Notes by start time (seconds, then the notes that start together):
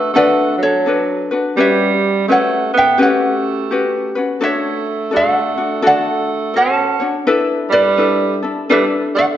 Already playing: A3 D4 F#4 B4 E5
0.14 A3 D4 F#4 A4 B4 D5 F#5
0.58 F#3
0.63 A4 C#5
0.86 D4 F#4 A4 B4
1.31 D4 F#4 B4
1.57 G3 C#4 F#4 G4 B4 C#5 E5
2.28 A3 C#4 F#4 G4 B4 C#5 F#5
2.73 B3 C#4 B4 E5
2.78 G5
2.98 A3 C#4 F#4 G4 B4 C#5
3.02 F#5
3.71 C#4 F#4 G4 B4
4.15 C#4 F#4 B4
4.41 A3 D4 F#4 A4 C#5 E5
5.11 A3 D4 F#4 A4
5.16 D5 F#5
5.58 D4 F#4
5.82 A3 D4 F#4 A4
5.87 D5 F#5
6.54 C#4 F#4 A4 C#5 F#5 A5
7.00 D4 F#4 C#5
7.27 D4 E4 A4 B4
7.70 G3 B4 D5
7.97 D4 E4 A4 B4
8.43 D4 E4 A4
8.69 G3 D4 E4 A4 B4 E5
9.15 A3 D5 F#5